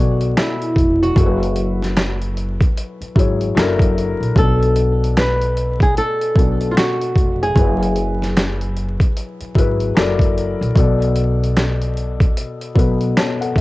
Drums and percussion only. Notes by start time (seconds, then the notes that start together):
0.21 closed hi-hat
0.37 finger snap, snare, closed hi-hat
0.62 closed hi-hat
0.76 kick, closed hi-hat
1.03 closed hi-hat
1.16 kick, closed hi-hat
1.43 closed hi-hat
1.56 closed hi-hat
1.83 snare, closed hi-hat
1.97 finger snap, snare, closed hi-hat
2.22 closed hi-hat
2.37 closed hi-hat
2.60 kick, closed hi-hat
2.77 closed hi-hat
3.02 closed hi-hat
3.16 kick, closed hi-hat
3.41 closed hi-hat
3.57 finger snap, snare, closed hi-hat
3.79 kick, closed hi-hat
3.98 closed hi-hat
4.23 closed hi-hat
4.36 kick, closed hi-hat
4.63 closed hi-hat
4.76 closed hi-hat
5.04 closed hi-hat
5.17 finger snap, snare, closed hi-hat
5.42 closed hi-hat
5.57 closed hi-hat
5.80 kick, closed hi-hat
5.97 closed hi-hat
6.21 closed hi-hat
6.36 kick, closed hi-hat
6.61 closed hi-hat
6.77 finger snap, snare, closed hi-hat
7.01 closed hi-hat
7.16 kick, closed hi-hat
7.43 closed hi-hat
7.56 kick, closed hi-hat
7.83 closed hi-hat
7.96 closed hi-hat
8.22 snare, closed hi-hat
8.37 finger snap, snare, closed hi-hat
8.61 closed hi-hat
8.77 closed hi-hat
9.00 kick, closed hi-hat
9.17 closed hi-hat
9.41 closed hi-hat
9.55 kick, closed hi-hat
9.80 closed hi-hat
9.97 finger snap, snare, closed hi-hat
10.19 kick, closed hi-hat
10.38 closed hi-hat
10.63 closed hi-hat
10.76 kick, closed hi-hat
11.02 closed hi-hat
11.16 closed hi-hat
11.44 closed hi-hat
11.57 finger snap, snare, closed hi-hat
11.82 closed hi-hat
11.97 closed hi-hat
12.20 kick, closed hi-hat
12.37 closed hi-hat
12.61 closed hi-hat
12.76 kick, closed hi-hat
13.01 closed hi-hat
13.17 finger snap, snare, closed hi-hat
13.42 closed hi-hat
13.56 kick